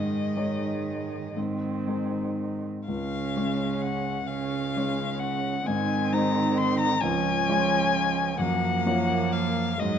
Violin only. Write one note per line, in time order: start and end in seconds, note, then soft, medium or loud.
0.00 1.33 D#5 medium
2.89 3.83 F5 medium
3.82 4.28 F#5 medium
4.27 5.21 F5 medium
5.19 5.68 F#5 medium
5.66 6.14 G#5 medium
6.12 6.59 A#5 medium
6.57 6.79 C6 medium
6.80 7.02 A#5 medium
7.01 8.40 G#5 medium
8.40 9.34 F#5 medium
9.33 9.81 F5 medium
9.80 9.99 D#5 medium